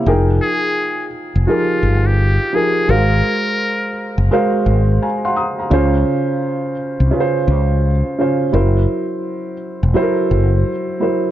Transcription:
0.06 fretless electric bass F1, felt piano F3 D#4 G#4 A#4 G5
0.42 muted trumpet G#4
1.36 fretless electric bass F1
1.47 felt piano F3 D#4 G4 G#4 A#4, muted trumpet F4
1.83 fretless electric bass G1
2.06 muted trumpet G4
2.53 felt piano F3 D#4 G4 G#4 A#4, muted trumpet G#4
2.88 fretless electric bass G#1, felt piano G#3 F#4 A#4 C5 F5, muted trumpet A#4
4.18 fretless electric bass F#1
4.31 felt piano G#3 F#4 A#4 C5 F5
4.66 fretless electric bass G#1
5.02 felt piano F5 G#5 A#5
5.25 felt piano F5 F#5 C6
5.36 felt piano A#5 D#6
5.59 felt piano F5 A#5
5.70 fretless electric bass C#2, felt piano C#3 C#4 F4 C5
7.00 fretless electric bass C2
7.11 felt piano C#3 C#4 F4 B4
7.20 felt piano C5
7.48 fretless electric bass C#2
8.19 felt piano C#3 C#4 F4 C5
8.52 fretless electric bass F#1, felt piano F#3 E4 A#4 C5
9.83 fretless electric bass E1
9.94 felt piano F#3 E4 A4 C5
10.02 felt piano A#4
10.31 fretless electric bass F#1
11.00 felt piano F#3 E4 A#4 C5

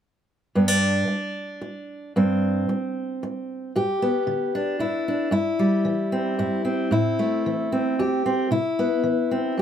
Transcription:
0.55 steel-string acoustic guitar G2 B3
0.68 steel-string acoustic guitar D4
1.07 muted steel-string acoustic guitar stroke
1.61 muted steel-string acoustic guitar stroke
2.16 steel-string acoustic guitar G2 C4
2.69 muted steel-string acoustic guitar stroke
3.23 muted steel-string acoustic guitar stroke
3.76 steel-string acoustic guitar G2 G4
4.02 steel-string acoustic guitar B3
4.27 steel-string acoustic guitar D3
4.55 steel-string acoustic guitar D4
4.79 steel-string acoustic guitar G2 E4
5.08 steel-string acoustic guitar D4
5.31 steel-string acoustic guitar G2 E4
5.59 steel-string acoustic guitar G3
5.85 steel-string acoustic guitar E3
6.12 steel-string acoustic guitar C4
6.39 steel-string acoustic guitar G2 E4
6.65 steel-string acoustic guitar C4
6.91 steel-string acoustic guitar A2 E4
7.19 steel-string acoustic guitar A3
7.46 steel-string acoustic guitar E3
7.72 steel-string acoustic guitar C4
7.99 steel-string acoustic guitar E2 G4
8.26 steel-string acoustic guitar C4
8.51 steel-string acoustic guitar C3 E4
8.79 steel-string acoustic guitar B3
9.03 steel-string acoustic guitar E3
9.31 steel-string acoustic guitar C4
9.57 steel-string acoustic guitar G2

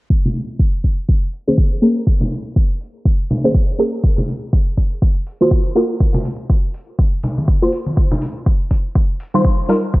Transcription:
0.10 kick
0.26 low conga
0.35 open hi-hat
0.59 kick
0.84 kick, open hi-hat
1.09 kick
1.33 open hi-hat
1.47 synth stab A#3 C#4 G#4 C5, high conga
1.58 kick
1.82 synth stab A#3 C#4 G#4 A#4, open hi-hat
2.07 kick
2.21 low conga
2.32 open hi-hat
2.56 kick
2.81 open hi-hat
3.05 kick
3.30 open hi-hat, low conga
3.44 synth stab A#3 C#4 G#4 C5, high conga
3.55 kick
3.79 synth stab A#3 C#4 G#4 A#4, open hi-hat
4.04 kick
4.18 low conga
4.28 open hi-hat
4.53 kick
4.77 kick, open hi-hat
5.02 kick
5.27 open hi-hat
5.41 synth stab A#3 F4 F#4 C5, high conga
5.51 kick
5.75 synth stab A#3 F4 F#4 A#4, open hi-hat
6.00 kick
6.14 low conga
6.25 open hi-hat
6.50 kick
6.74 open hi-hat
6.99 kick
7.23 open hi-hat, low conga
7.38 high conga
7.48 kick
7.62 synth stab A#3 F4 F#4 C5
7.72 open hi-hat
7.86 high conga
7.97 kick
8.11 low conga
8.22 open hi-hat
8.46 kick
8.71 kick, open hi-hat
8.95 kick
9.20 open hi-hat
9.34 synth stab G3 D#4 F4 C5, high conga
9.45 kick
9.69 synth stab G3 D#4 F4 A#4, open hi-hat
9.94 kick

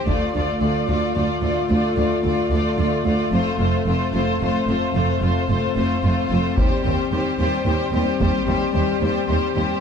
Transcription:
0.07 double bass section D2, cello section D2, viola section A3, french horn section A3 F4, violin section F4 D5, taiko
0.34 double bass section D2, cello section D2, viola section A3, violin section F4 D5
0.61 cello section D2, double bass section D2, viola section A3, violin section F4 D5
0.88 double bass section D2, cello section D2, viola section A3, violin section F4 D5
1.15 cello section D2, double bass section D2, viola section A3, violin section F4 D5
1.42 double bass section D2, cello section D2, viola section A3, violin section F4 D5
1.70 double bass section D2, cello section D2, viola section A3, violin section F4 D5
1.96 double bass section D2, cello section D2, viola section A3, violin section F4 D5
2.23 cello section D2, double bass section D2, viola section A3, violin section F4 D5
2.50 double bass section D2, cello section D2, viola section A3, violin section F4 D5
2.78 double bass section D2, cello section D2, viola section A3, violin section F4 D5
3.05 double bass section D2, cello section D2, viola section A3, violin section F4 D5
3.32 double bass section F1, cello section F2, viola section A3, french horn section C4, violin section F4 C5
3.58 double bass section F1, cello section F2, viola section A3, violin section F4 C5
3.86 double bass section F1, cello section F2, viola section A3, violin section F4 C5
4.13 double bass section F1, cello section F2, viola section A3, violin section F4 C5
4.40 double bass section F1, cello section F2, viola section A3, violin section F4 C5
4.67 double bass section F1, cello section F2, viola section A3, violin section F4 C5
4.94 double bass section F1, cello section F2, viola section A3, violin section F4 C5
5.21 double bass section F1, cello section F2, viola section A3, violin section F4 C5
5.49 double bass section F1, cello section F2, viola section A3, violin section F4 C5
5.76 double bass section F1, cello section F2, viola section A3, violin section F4 C5
6.03 double bass section F1, cello section F2, viola section A3, violin section F4 C5
6.29 double bass section F1, cello section F2, viola section A3, violin section F4 C5
6.57 double bass section D#2, cello section D#2, viola section G3, french horn section G3, violin section G4 C5, taiko
6.83 double bass section D#2, cello section D#2, viola section G3, violin section G4 C5
7.11 double bass section D#2, cello section D#2, viola section G3, violin section G4 C5
7.38 double bass section D#2, cello section D#2, viola section G3, violin section G4 C5
7.65 double bass section D#2, cello section D#2, viola section G3, violin section G4 C5
7.92 double bass section D#2, cello section D#2, viola section G3, violin section G4 C5
8.19 double bass section D#2, cello section D#2, viola section G3, violin section G4 C5, taiko
8.45 double bass section D#2, cello section D#2, viola section G3, violin section G4 C5
8.72 cello section D#2, double bass section D#2, viola section G3, violin section G4 C5
9.00 cello section D#2, double bass section D#2, viola section G3, violin section G4 C5
9.27 double bass section D#2, cello section D#2, viola section G3, violin section G4 C5
9.55 cello section D#2, double bass section D#2, viola section G3, violin section G4 C5

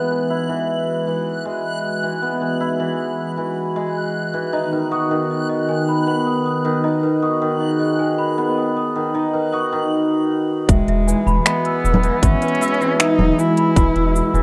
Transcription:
Already playing: analog synth pad E3 G#3 F#4, hammered dulcimer G#3 B3, synth texture F#6
0.11 hammered dulcimer E3
0.30 hammered dulcimer E4
0.49 hammered dulcimer E3
1.07 hammered dulcimer E3
1.45 hammered dulcimer G#3
2.03 hammered dulcimer E3
2.22 hammered dulcimer B3
2.41 hammered dulcimer E3
2.60 hammered dulcimer E4
2.80 hammered dulcimer E3
3.37 hammered dulcimer E3
3.76 hammered dulcimer G#3
4.34 hammered dulcimer E3
4.53 analog synth pad D#3 B3, hammered dulcimer D#4, celesta D#5
4.72 hammered dulcimer D#3, celesta B4
4.91 hammered dulcimer F#4, celesta D#6
5.11 hammered dulcimer D#3, celesta D#6
5.31 celesta D#5
5.49 celesta D#5
5.68 hammered dulcimer D#3, celesta G#5
5.89 celesta B5
6.07 hammered dulcimer B3, celesta B5
6.27 celesta D#6
6.46 celesta D#6
6.65 hammered dulcimer D#3, celesta D#6
6.84 hammered dulcimer D#4, celesta D#5
7.03 hammered dulcimer D#3, celesta B4
7.22 hammered dulcimer F#4, celesta D#6
7.42 hammered dulcimer D#3, celesta D#6
7.61 analog synth pad G#4, celesta D#5
7.80 celesta D#5
7.99 hammered dulcimer D#3, celesta G#5
8.18 celesta B5
8.38 hammered dulcimer B3, celesta B5
8.57 celesta D#6
8.77 celesta D#6
8.96 hammered dulcimer D#3, celesta D#6
9.14 hammered dulcimer D#4, celesta D#5
9.34 hammered dulcimer D#3, celesta B4
9.53 hammered dulcimer F#4, celesta D#6
9.72 hammered dulcimer D#3, celesta D#6
10.68 analog synth bass E1, analog synth pad E3 G#3 F#4, cello G#3, celesta E5, kick, closed hi-hat, shaker
10.88 analog synth bass E1, celesta E5, closed hi-hat
11.07 hammered dulcimer E3, celesta G#5, shaker
11.27 analog synth bass E1, celesta B5, shaker
11.46 hammered dulcimer G#3, cello B3, celesta B5, finger snap, closed hi-hat, shaker
11.65 celesta E6, closed hi-hat
11.84 analog synth bass E1, celesta E6, shaker
11.94 low conga
12.03 hammered dulcimer E3, celesta E6, closed hi-hat, shaker
12.22 analog synth bass G#1, hammered dulcimer B3, cello C#4, celesta E5, kick, closed hi-hat, shaker
12.42 hammered dulcimer E3, celesta B4, closed hi-hat, shaker
12.48 closed hi-hat
12.55 closed hi-hat
12.61 hammered dulcimer E4, celesta E6, closed hi-hat, shaker
12.68 closed hi-hat
12.74 closed hi-hat
12.80 hammered dulcimer E3, celesta E6, shaker
13.00 cello D#4, celesta E5, finger snap, closed hi-hat, shaker
13.19 analog synth bass E1, celesta E5, low conga
13.38 hammered dulcimer E3, cello E4, celesta G#5, shaker
13.57 celesta B5, closed hi-hat
13.76 analog synth bass E1, hammered dulcimer G#3, celesta B5, kick, closed hi-hat, shaker
13.96 analog synth bass E1, celesta E6, closed hi-hat
14.15 celesta E6, shaker
14.34 analog synth bass E1, hammered dulcimer E3, celesta E6, shaker

